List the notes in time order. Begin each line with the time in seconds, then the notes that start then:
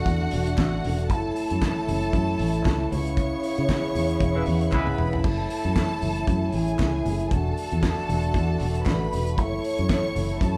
Already playing: D3 A3 F#4 F#5
0.06 E2, kick, closed hi-hat, muted conga, high conga
0.22 muted conga
0.31 E1, open hi-hat, high conga
0.46 closed hi-hat
0.57 A1, kick, snare, clap, closed hi-hat, muted conga, high conga
0.74 muted conga
0.84 E1, open hi-hat, low conga
0.99 closed hi-hat
1.09 F#1 A2 A3 E4 A4 A5, kick, closed hi-hat
1.25 muted conga
1.36 open hi-hat
1.50 F#2, closed hi-hat
1.62 kick, snare, clap, closed hi-hat, muted conga, high conga
1.77 muted conga
1.88 F#1, open hi-hat, high conga, low conga
2.02 closed hi-hat
2.13 F#2, kick, closed hi-hat, high conga
2.29 muted conga
2.39 A1, open hi-hat, high conga
2.54 closed hi-hat
2.65 C#2, kick, snare, clap, closed hi-hat, muted conga, high conga
2.91 C#2 C#3 B3 C#5 C#6, open hi-hat, low conga
3.06 closed hi-hat
3.17 kick, closed hi-hat
3.43 open hi-hat
3.58 C#3, closed hi-hat
3.69 kick, snare, clap, closed hi-hat, high conga
3.84 muted conga
3.95 E2, open hi-hat, high conga, low conga
4.09 closed hi-hat
4.20 E1, kick, closed hi-hat, high conga
4.35 G#3 B3 E4 B4, muted conga
4.46 E2, open hi-hat, high conga
4.61 closed hi-hat
4.72 C#2 G#3 B3 E4 B4 B5, kick, clap, high tom, muted conga, high conga
4.87 mid tom, muted conga
4.98 E1, mid tom, low conga
5.13 floor tom
5.24 F#1 A2 A3 A4 A5, kick, crash
5.39 muted conga
5.50 open hi-hat
5.64 F#2, closed hi-hat
5.76 kick, snare, clap, closed hi-hat, muted conga, high conga
5.92 muted conga
6.02 F#1, open hi-hat, high conga, low conga
6.16 closed hi-hat
6.27 F#2, kick, closed hi-hat, high conga
6.43 muted conga
6.52 A1 G#4 G#5, open hi-hat, high conga
6.68 closed hi-hat
6.79 C#2, kick, snare, clap, closed hi-hat, high conga
6.95 muted conga
7.06 F#1, open hi-hat, low conga
7.20 closed hi-hat
7.31 E1 D3 A3 F#4 A4 A5, kick, closed hi-hat, muted conga
7.46 muted conga
7.57 open hi-hat
7.72 E2, closed hi-hat
7.83 kick, snare, clap, closed hi-hat, muted conga, high conga
7.99 muted conga
8.09 E1, open hi-hat, high conga, low conga
8.23 closed hi-hat
8.34 E2, kick, closed hi-hat, muted conga, high conga
8.59 E1, open hi-hat, high conga
8.75 closed hi-hat
8.86 A1 B4 B5, kick, snare, clap, closed hi-hat, high conga
9.02 muted conga
9.13 E1, open hi-hat, low conga
9.27 closed hi-hat
9.37 F#1 A2 A3 E4 C#5 C#6, kick, closed hi-hat
9.53 muted conga
9.64 open hi-hat
9.78 F#2, closed hi-hat
9.89 kick, snare, clap, closed hi-hat, muted conga, high conga
10.16 F#1, open hi-hat, high conga, low conga
10.29 closed hi-hat
10.40 F#2 A4 A5, kick, closed hi-hat, high conga